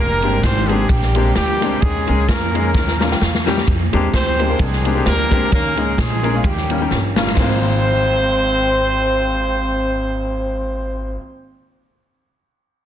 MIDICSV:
0, 0, Header, 1, 5, 480
1, 0, Start_track
1, 0, Key_signature, -4, "major"
1, 0, Tempo, 461538
1, 1897, Time_signature, 4, 2, 24, 8
1, 13368, End_track
2, 0, Start_track
2, 0, Title_t, "Horn section"
2, 0, Program_c, 0, 61
2, 0, Note_on_c, 0, 58, 107
2, 0, Note_on_c, 0, 62, 88
2, 0, Note_on_c, 0, 67, 84
2, 0, Note_on_c, 0, 70, 117
2, 420, Note_off_c, 0, 58, 0
2, 420, Note_off_c, 0, 70, 0
2, 449, Note_on_c, 0, 60, 94
2, 449, Note_on_c, 0, 72, 103
2, 716, Note_on_c, 0, 56, 90
2, 716, Note_on_c, 0, 68, 98
2, 720, Note_off_c, 0, 60, 0
2, 720, Note_off_c, 0, 72, 0
2, 892, Note_off_c, 0, 62, 0
2, 894, Note_off_c, 0, 67, 0
2, 928, Note_on_c, 0, 55, 90
2, 928, Note_on_c, 0, 67, 98
2, 933, Note_off_c, 0, 56, 0
2, 933, Note_off_c, 0, 68, 0
2, 934, Note_on_c, 0, 58, 72
2, 934, Note_on_c, 0, 62, 74
2, 1398, Note_off_c, 0, 55, 0
2, 1398, Note_off_c, 0, 67, 0
2, 1401, Note_off_c, 0, 62, 0
2, 1403, Note_off_c, 0, 58, 0
2, 1411, Note_on_c, 0, 55, 96
2, 1411, Note_on_c, 0, 67, 104
2, 1413, Note_on_c, 0, 62, 79
2, 1416, Note_on_c, 0, 58, 78
2, 1860, Note_off_c, 0, 55, 0
2, 1860, Note_off_c, 0, 67, 0
2, 1861, Note_off_c, 0, 62, 0
2, 1863, Note_off_c, 0, 58, 0
2, 1888, Note_on_c, 0, 56, 108
2, 1888, Note_on_c, 0, 68, 117
2, 1897, Note_on_c, 0, 61, 72
2, 2372, Note_off_c, 0, 61, 0
2, 2373, Note_off_c, 0, 56, 0
2, 2373, Note_off_c, 0, 68, 0
2, 2380, Note_on_c, 0, 58, 86
2, 2380, Note_on_c, 0, 70, 93
2, 2384, Note_on_c, 0, 61, 63
2, 3568, Note_off_c, 0, 61, 0
2, 3607, Note_off_c, 0, 58, 0
2, 3607, Note_off_c, 0, 70, 0
2, 4308, Note_on_c, 0, 67, 86
2, 4310, Note_on_c, 0, 68, 80
2, 4311, Note_on_c, 0, 60, 89
2, 4311, Note_on_c, 0, 72, 97
2, 4753, Note_off_c, 0, 60, 0
2, 4753, Note_off_c, 0, 72, 0
2, 4782, Note_off_c, 0, 68, 0
2, 4787, Note_on_c, 0, 60, 68
2, 4787, Note_on_c, 0, 62, 66
2, 4795, Note_on_c, 0, 56, 93
2, 4795, Note_on_c, 0, 68, 101
2, 5224, Note_off_c, 0, 67, 0
2, 5260, Note_off_c, 0, 62, 0
2, 5269, Note_off_c, 0, 56, 0
2, 5269, Note_off_c, 0, 68, 0
2, 5272, Note_on_c, 0, 62, 84
2, 5272, Note_on_c, 0, 67, 79
2, 5280, Note_on_c, 0, 58, 111
2, 5280, Note_on_c, 0, 70, 120
2, 5704, Note_off_c, 0, 60, 0
2, 5714, Note_off_c, 0, 62, 0
2, 5714, Note_off_c, 0, 67, 0
2, 5719, Note_off_c, 0, 58, 0
2, 5719, Note_off_c, 0, 70, 0
2, 5743, Note_on_c, 0, 61, 77
2, 5755, Note_on_c, 0, 58, 99
2, 5755, Note_on_c, 0, 70, 108
2, 6196, Note_off_c, 0, 58, 0
2, 6196, Note_off_c, 0, 70, 0
2, 6222, Note_off_c, 0, 61, 0
2, 6234, Note_on_c, 0, 61, 60
2, 6243, Note_on_c, 0, 56, 81
2, 6243, Note_on_c, 0, 68, 89
2, 6676, Note_off_c, 0, 61, 0
2, 6714, Note_off_c, 0, 56, 0
2, 6714, Note_off_c, 0, 68, 0
2, 6715, Note_on_c, 0, 58, 63
2, 6717, Note_on_c, 0, 61, 63
2, 6723, Note_on_c, 0, 55, 69
2, 6723, Note_on_c, 0, 67, 75
2, 7195, Note_off_c, 0, 55, 0
2, 7195, Note_off_c, 0, 67, 0
2, 7629, Note_off_c, 0, 58, 0
2, 7630, Note_off_c, 0, 61, 0
2, 7668, Note_on_c, 0, 60, 95
2, 7668, Note_on_c, 0, 72, 103
2, 11604, Note_off_c, 0, 60, 0
2, 11604, Note_off_c, 0, 72, 0
2, 13368, End_track
3, 0, Start_track
3, 0, Title_t, "Grand piano"
3, 0, Program_c, 1, 0
3, 238, Note_on_c, 1, 56, 76
3, 243, Note_on_c, 1, 58, 71
3, 246, Note_on_c, 1, 60, 71
3, 251, Note_on_c, 1, 62, 75
3, 257, Note_on_c, 1, 67, 87
3, 377, Note_off_c, 1, 56, 0
3, 379, Note_off_c, 1, 58, 0
3, 381, Note_off_c, 1, 60, 0
3, 384, Note_off_c, 1, 62, 0
3, 387, Note_off_c, 1, 67, 0
3, 713, Note_on_c, 1, 56, 78
3, 719, Note_on_c, 1, 58, 74
3, 725, Note_on_c, 1, 60, 72
3, 731, Note_on_c, 1, 62, 79
3, 732, Note_on_c, 1, 67, 86
3, 855, Note_off_c, 1, 56, 0
3, 858, Note_off_c, 1, 58, 0
3, 860, Note_off_c, 1, 60, 0
3, 864, Note_off_c, 1, 62, 0
3, 864, Note_off_c, 1, 67, 0
3, 1196, Note_on_c, 1, 56, 80
3, 1201, Note_on_c, 1, 58, 74
3, 1207, Note_on_c, 1, 60, 77
3, 1213, Note_on_c, 1, 62, 68
3, 1215, Note_on_c, 1, 67, 89
3, 1336, Note_off_c, 1, 56, 0
3, 1339, Note_off_c, 1, 58, 0
3, 1341, Note_off_c, 1, 60, 0
3, 1345, Note_off_c, 1, 62, 0
3, 1346, Note_off_c, 1, 67, 0
3, 1675, Note_on_c, 1, 56, 80
3, 1682, Note_on_c, 1, 58, 76
3, 1689, Note_on_c, 1, 60, 74
3, 1692, Note_on_c, 1, 62, 80
3, 1697, Note_on_c, 1, 67, 95
3, 1816, Note_off_c, 1, 56, 0
3, 1819, Note_off_c, 1, 58, 0
3, 1822, Note_off_c, 1, 60, 0
3, 1824, Note_off_c, 1, 62, 0
3, 1826, Note_off_c, 1, 67, 0
3, 1907, Note_on_c, 1, 51, 67
3, 2156, Note_on_c, 1, 56, 84
3, 2159, Note_on_c, 1, 58, 70
3, 2164, Note_on_c, 1, 61, 75
3, 2171, Note_on_c, 1, 63, 69
3, 2176, Note_on_c, 1, 68, 79
3, 2296, Note_off_c, 1, 56, 0
3, 2298, Note_off_c, 1, 58, 0
3, 2300, Note_off_c, 1, 61, 0
3, 2304, Note_off_c, 1, 63, 0
3, 2306, Note_off_c, 1, 68, 0
3, 2608, Note_off_c, 1, 51, 0
3, 2645, Note_on_c, 1, 56, 84
3, 2648, Note_on_c, 1, 58, 70
3, 2655, Note_on_c, 1, 61, 69
3, 2658, Note_on_c, 1, 63, 67
3, 2662, Note_on_c, 1, 68, 87
3, 2781, Note_off_c, 1, 56, 0
3, 2783, Note_off_c, 1, 58, 0
3, 2786, Note_off_c, 1, 61, 0
3, 2788, Note_off_c, 1, 63, 0
3, 2790, Note_off_c, 1, 68, 0
3, 2872, Note_on_c, 1, 51, 69
3, 3120, Note_on_c, 1, 55, 84
3, 3126, Note_on_c, 1, 58, 84
3, 3130, Note_on_c, 1, 61, 74
3, 3131, Note_on_c, 1, 82, 73
3, 3137, Note_on_c, 1, 63, 83
3, 3140, Note_on_c, 1, 65, 94
3, 3227, Note_off_c, 1, 82, 0
3, 3238, Note_on_c, 1, 79, 76
3, 3259, Note_off_c, 1, 55, 0
3, 3262, Note_off_c, 1, 58, 0
3, 3264, Note_off_c, 1, 61, 0
3, 3267, Note_off_c, 1, 63, 0
3, 3269, Note_off_c, 1, 65, 0
3, 3334, Note_off_c, 1, 79, 0
3, 3346, Note_on_c, 1, 77, 79
3, 3571, Note_off_c, 1, 51, 0
3, 3598, Note_on_c, 1, 55, 86
3, 3605, Note_on_c, 1, 58, 86
3, 3610, Note_on_c, 1, 61, 84
3, 3615, Note_on_c, 1, 63, 83
3, 3619, Note_on_c, 1, 67, 108
3, 3738, Note_off_c, 1, 55, 0
3, 3742, Note_off_c, 1, 58, 0
3, 3745, Note_off_c, 1, 61, 0
3, 3747, Note_off_c, 1, 63, 0
3, 3749, Note_off_c, 1, 67, 0
3, 3789, Note_off_c, 1, 77, 0
3, 4086, Note_on_c, 1, 56, 92
3, 4089, Note_on_c, 1, 58, 83
3, 4094, Note_on_c, 1, 60, 82
3, 4097, Note_on_c, 1, 62, 82
3, 4102, Note_on_c, 1, 67, 101
3, 4223, Note_off_c, 1, 56, 0
3, 4224, Note_off_c, 1, 58, 0
3, 4227, Note_off_c, 1, 60, 0
3, 4228, Note_off_c, 1, 62, 0
3, 4231, Note_off_c, 1, 67, 0
3, 4564, Note_on_c, 1, 56, 82
3, 4568, Note_on_c, 1, 58, 75
3, 4575, Note_on_c, 1, 60, 74
3, 4580, Note_on_c, 1, 62, 72
3, 4582, Note_on_c, 1, 67, 84
3, 4634, Note_off_c, 1, 56, 0
3, 4636, Note_off_c, 1, 58, 0
3, 4639, Note_off_c, 1, 60, 0
3, 4642, Note_off_c, 1, 62, 0
3, 4643, Note_off_c, 1, 67, 0
3, 4666, Note_on_c, 1, 56, 78
3, 4671, Note_on_c, 1, 58, 70
3, 4677, Note_on_c, 1, 60, 67
3, 4680, Note_on_c, 1, 62, 64
3, 4686, Note_on_c, 1, 70, 82
3, 4814, Note_off_c, 1, 56, 0
3, 4816, Note_off_c, 1, 58, 0
3, 4820, Note_off_c, 1, 60, 0
3, 4821, Note_off_c, 1, 62, 0
3, 4824, Note_off_c, 1, 70, 0
3, 5037, Note_on_c, 1, 56, 78
3, 5040, Note_on_c, 1, 58, 69
3, 5047, Note_on_c, 1, 60, 67
3, 5051, Note_on_c, 1, 62, 71
3, 5056, Note_on_c, 1, 67, 88
3, 5111, Note_off_c, 1, 56, 0
3, 5112, Note_off_c, 1, 58, 0
3, 5116, Note_off_c, 1, 60, 0
3, 5118, Note_off_c, 1, 62, 0
3, 5120, Note_off_c, 1, 67, 0
3, 5145, Note_on_c, 1, 56, 76
3, 5152, Note_on_c, 1, 58, 68
3, 5154, Note_on_c, 1, 60, 66
3, 5159, Note_on_c, 1, 62, 75
3, 5167, Note_on_c, 1, 67, 87
3, 5294, Note_off_c, 1, 56, 0
3, 5297, Note_off_c, 1, 58, 0
3, 5298, Note_off_c, 1, 60, 0
3, 5301, Note_off_c, 1, 62, 0
3, 5305, Note_off_c, 1, 67, 0
3, 5519, Note_on_c, 1, 56, 85
3, 5525, Note_on_c, 1, 58, 74
3, 5530, Note_on_c, 1, 60, 81
3, 5532, Note_on_c, 1, 62, 76
3, 5538, Note_on_c, 1, 67, 94
3, 5661, Note_off_c, 1, 56, 0
3, 5664, Note_off_c, 1, 58, 0
3, 5666, Note_off_c, 1, 60, 0
3, 5667, Note_off_c, 1, 62, 0
3, 5670, Note_off_c, 1, 67, 0
3, 5740, Note_on_c, 1, 51, 76
3, 6002, Note_on_c, 1, 56, 77
3, 6010, Note_on_c, 1, 58, 69
3, 6014, Note_on_c, 1, 61, 75
3, 6016, Note_on_c, 1, 63, 75
3, 6023, Note_on_c, 1, 68, 90
3, 6143, Note_off_c, 1, 56, 0
3, 6146, Note_off_c, 1, 58, 0
3, 6149, Note_off_c, 1, 61, 0
3, 6150, Note_off_c, 1, 63, 0
3, 6153, Note_off_c, 1, 68, 0
3, 6448, Note_off_c, 1, 51, 0
3, 6478, Note_on_c, 1, 56, 84
3, 6483, Note_on_c, 1, 58, 70
3, 6487, Note_on_c, 1, 61, 76
3, 6494, Note_on_c, 1, 63, 79
3, 6499, Note_on_c, 1, 70, 93
3, 6552, Note_off_c, 1, 56, 0
3, 6555, Note_off_c, 1, 58, 0
3, 6557, Note_off_c, 1, 61, 0
3, 6561, Note_off_c, 1, 63, 0
3, 6563, Note_off_c, 1, 70, 0
3, 6589, Note_on_c, 1, 56, 65
3, 6596, Note_on_c, 1, 58, 66
3, 6598, Note_on_c, 1, 61, 67
3, 6604, Note_on_c, 1, 63, 69
3, 6607, Note_on_c, 1, 65, 80
3, 6700, Note_off_c, 1, 56, 0
3, 6703, Note_off_c, 1, 58, 0
3, 6703, Note_on_c, 1, 51, 69
3, 6704, Note_off_c, 1, 61, 0
3, 6707, Note_off_c, 1, 63, 0
3, 6709, Note_off_c, 1, 65, 0
3, 6964, Note_on_c, 1, 55, 75
3, 6969, Note_on_c, 1, 58, 73
3, 6975, Note_on_c, 1, 61, 68
3, 6978, Note_on_c, 1, 63, 70
3, 6984, Note_on_c, 1, 65, 76
3, 7036, Note_off_c, 1, 55, 0
3, 7038, Note_off_c, 1, 58, 0
3, 7042, Note_off_c, 1, 61, 0
3, 7043, Note_off_c, 1, 63, 0
3, 7046, Note_off_c, 1, 65, 0
3, 7071, Note_on_c, 1, 55, 72
3, 7079, Note_on_c, 1, 58, 64
3, 7081, Note_on_c, 1, 61, 73
3, 7086, Note_on_c, 1, 63, 62
3, 7094, Note_on_c, 1, 67, 82
3, 7219, Note_off_c, 1, 55, 0
3, 7223, Note_off_c, 1, 58, 0
3, 7224, Note_off_c, 1, 61, 0
3, 7226, Note_off_c, 1, 63, 0
3, 7230, Note_off_c, 1, 67, 0
3, 7410, Note_off_c, 1, 51, 0
3, 7448, Note_on_c, 1, 55, 91
3, 7455, Note_on_c, 1, 58, 89
3, 7461, Note_on_c, 1, 61, 87
3, 7464, Note_on_c, 1, 63, 84
3, 7469, Note_on_c, 1, 65, 106
3, 7587, Note_off_c, 1, 55, 0
3, 7590, Note_off_c, 1, 58, 0
3, 7593, Note_off_c, 1, 61, 0
3, 7594, Note_off_c, 1, 63, 0
3, 7597, Note_off_c, 1, 65, 0
3, 7639, Note_on_c, 1, 56, 82
3, 7664, Note_on_c, 1, 58, 84
3, 7678, Note_on_c, 1, 32, 88
3, 7690, Note_on_c, 1, 60, 74
3, 7715, Note_on_c, 1, 65, 94
3, 11575, Note_off_c, 1, 56, 0
3, 11600, Note_off_c, 1, 58, 0
3, 11614, Note_off_c, 1, 32, 0
3, 11626, Note_off_c, 1, 60, 0
3, 11651, Note_off_c, 1, 65, 0
3, 13368, End_track
4, 0, Start_track
4, 0, Title_t, "Upright bass"
4, 0, Program_c, 2, 32
4, 0, Note_on_c, 2, 29, 99
4, 250, Note_off_c, 2, 29, 0
4, 250, Note_on_c, 2, 31, 104
4, 428, Note_off_c, 2, 31, 0
4, 454, Note_on_c, 2, 32, 101
4, 863, Note_off_c, 2, 32, 0
4, 929, Note_on_c, 2, 34, 96
4, 1340, Note_off_c, 2, 34, 0
4, 1415, Note_on_c, 2, 38, 94
4, 1824, Note_off_c, 2, 38, 0
4, 1897, Note_on_c, 2, 39, 96
4, 2124, Note_off_c, 2, 39, 0
4, 2171, Note_on_c, 2, 37, 94
4, 2349, Note_off_c, 2, 37, 0
4, 2376, Note_on_c, 2, 41, 104
4, 2856, Note_off_c, 2, 41, 0
4, 2856, Note_on_c, 2, 39, 112
4, 3265, Note_off_c, 2, 39, 0
4, 3340, Note_on_c, 2, 40, 93
4, 3748, Note_off_c, 2, 40, 0
4, 3826, Note_on_c, 2, 41, 96
4, 4051, Note_off_c, 2, 41, 0
4, 4093, Note_on_c, 2, 39, 96
4, 4271, Note_off_c, 2, 39, 0
4, 4301, Note_on_c, 2, 38, 105
4, 4709, Note_off_c, 2, 38, 0
4, 4780, Note_on_c, 2, 36, 101
4, 5189, Note_off_c, 2, 36, 0
4, 5265, Note_on_c, 2, 38, 94
4, 5672, Note_off_c, 2, 38, 0
4, 5744, Note_on_c, 2, 39, 106
4, 6011, Note_off_c, 2, 39, 0
4, 6011, Note_on_c, 2, 37, 101
4, 6192, Note_off_c, 2, 37, 0
4, 6220, Note_on_c, 2, 34, 97
4, 6630, Note_off_c, 2, 34, 0
4, 6701, Note_on_c, 2, 39, 101
4, 7111, Note_off_c, 2, 39, 0
4, 7188, Note_on_c, 2, 31, 94
4, 7595, Note_off_c, 2, 31, 0
4, 7665, Note_on_c, 2, 32, 91
4, 11601, Note_off_c, 2, 32, 0
4, 13368, End_track
5, 0, Start_track
5, 0, Title_t, "Drums"
5, 232, Note_on_c, 9, 53, 55
5, 336, Note_off_c, 9, 53, 0
5, 452, Note_on_c, 9, 36, 90
5, 455, Note_on_c, 9, 53, 65
5, 457, Note_on_c, 9, 38, 109
5, 556, Note_off_c, 9, 36, 0
5, 559, Note_off_c, 9, 53, 0
5, 561, Note_off_c, 9, 38, 0
5, 720, Note_on_c, 9, 53, 57
5, 824, Note_off_c, 9, 53, 0
5, 929, Note_on_c, 9, 36, 117
5, 934, Note_on_c, 9, 53, 91
5, 1033, Note_off_c, 9, 36, 0
5, 1038, Note_off_c, 9, 53, 0
5, 1063, Note_on_c, 9, 38, 34
5, 1167, Note_off_c, 9, 38, 0
5, 1194, Note_on_c, 9, 53, 60
5, 1298, Note_off_c, 9, 53, 0
5, 1410, Note_on_c, 9, 38, 116
5, 1415, Note_on_c, 9, 53, 89
5, 1514, Note_off_c, 9, 38, 0
5, 1519, Note_off_c, 9, 53, 0
5, 1678, Note_on_c, 9, 38, 41
5, 1686, Note_on_c, 9, 53, 68
5, 1782, Note_off_c, 9, 38, 0
5, 1790, Note_off_c, 9, 53, 0
5, 1894, Note_on_c, 9, 53, 70
5, 1897, Note_on_c, 9, 36, 120
5, 1998, Note_off_c, 9, 53, 0
5, 2001, Note_off_c, 9, 36, 0
5, 2158, Note_on_c, 9, 53, 53
5, 2262, Note_off_c, 9, 53, 0
5, 2378, Note_on_c, 9, 36, 87
5, 2381, Note_on_c, 9, 53, 69
5, 2383, Note_on_c, 9, 38, 119
5, 2482, Note_off_c, 9, 36, 0
5, 2485, Note_off_c, 9, 53, 0
5, 2487, Note_off_c, 9, 38, 0
5, 2651, Note_on_c, 9, 53, 64
5, 2755, Note_off_c, 9, 53, 0
5, 2855, Note_on_c, 9, 36, 111
5, 2860, Note_on_c, 9, 38, 68
5, 2959, Note_off_c, 9, 36, 0
5, 2964, Note_off_c, 9, 38, 0
5, 2992, Note_on_c, 9, 38, 60
5, 3096, Note_off_c, 9, 38, 0
5, 3128, Note_on_c, 9, 38, 80
5, 3232, Note_off_c, 9, 38, 0
5, 3236, Note_on_c, 9, 38, 80
5, 3340, Note_off_c, 9, 38, 0
5, 3344, Note_on_c, 9, 38, 99
5, 3448, Note_off_c, 9, 38, 0
5, 3480, Note_on_c, 9, 38, 91
5, 3584, Note_off_c, 9, 38, 0
5, 3609, Note_on_c, 9, 38, 113
5, 3713, Note_off_c, 9, 38, 0
5, 3717, Note_on_c, 9, 38, 102
5, 3821, Note_off_c, 9, 38, 0
5, 3824, Note_on_c, 9, 36, 119
5, 3825, Note_on_c, 9, 53, 65
5, 3928, Note_off_c, 9, 36, 0
5, 3929, Note_off_c, 9, 53, 0
5, 4087, Note_on_c, 9, 53, 51
5, 4191, Note_off_c, 9, 53, 0
5, 4301, Note_on_c, 9, 36, 88
5, 4303, Note_on_c, 9, 53, 65
5, 4305, Note_on_c, 9, 38, 127
5, 4405, Note_off_c, 9, 36, 0
5, 4407, Note_off_c, 9, 53, 0
5, 4409, Note_off_c, 9, 38, 0
5, 4570, Note_on_c, 9, 53, 66
5, 4674, Note_off_c, 9, 53, 0
5, 4779, Note_on_c, 9, 36, 122
5, 4786, Note_on_c, 9, 53, 90
5, 4883, Note_off_c, 9, 36, 0
5, 4890, Note_off_c, 9, 53, 0
5, 4917, Note_on_c, 9, 38, 36
5, 5021, Note_off_c, 9, 38, 0
5, 5045, Note_on_c, 9, 53, 61
5, 5149, Note_off_c, 9, 53, 0
5, 5263, Note_on_c, 9, 38, 119
5, 5268, Note_on_c, 9, 53, 96
5, 5367, Note_off_c, 9, 38, 0
5, 5372, Note_off_c, 9, 53, 0
5, 5526, Note_on_c, 9, 38, 38
5, 5528, Note_on_c, 9, 36, 97
5, 5534, Note_on_c, 9, 53, 69
5, 5630, Note_off_c, 9, 38, 0
5, 5632, Note_off_c, 9, 36, 0
5, 5638, Note_off_c, 9, 53, 0
5, 5740, Note_on_c, 9, 53, 73
5, 5744, Note_on_c, 9, 36, 120
5, 5844, Note_off_c, 9, 53, 0
5, 5848, Note_off_c, 9, 36, 0
5, 6004, Note_on_c, 9, 53, 51
5, 6108, Note_off_c, 9, 53, 0
5, 6222, Note_on_c, 9, 36, 88
5, 6225, Note_on_c, 9, 53, 72
5, 6227, Note_on_c, 9, 38, 123
5, 6326, Note_off_c, 9, 36, 0
5, 6329, Note_off_c, 9, 53, 0
5, 6331, Note_off_c, 9, 38, 0
5, 6490, Note_on_c, 9, 53, 55
5, 6594, Note_off_c, 9, 53, 0
5, 6699, Note_on_c, 9, 36, 117
5, 6706, Note_on_c, 9, 53, 92
5, 6803, Note_off_c, 9, 36, 0
5, 6810, Note_off_c, 9, 53, 0
5, 6835, Note_on_c, 9, 38, 36
5, 6939, Note_off_c, 9, 38, 0
5, 6966, Note_on_c, 9, 53, 58
5, 7070, Note_off_c, 9, 53, 0
5, 7185, Note_on_c, 9, 38, 60
5, 7289, Note_off_c, 9, 38, 0
5, 7451, Note_on_c, 9, 38, 114
5, 7555, Note_off_c, 9, 38, 0
5, 7559, Note_on_c, 9, 38, 101
5, 7663, Note_off_c, 9, 38, 0
5, 7663, Note_on_c, 9, 38, 105
5, 7663, Note_on_c, 9, 46, 89
5, 7665, Note_on_c, 9, 36, 107
5, 7767, Note_off_c, 9, 38, 0
5, 7767, Note_off_c, 9, 46, 0
5, 7769, Note_off_c, 9, 36, 0
5, 13368, End_track
0, 0, End_of_file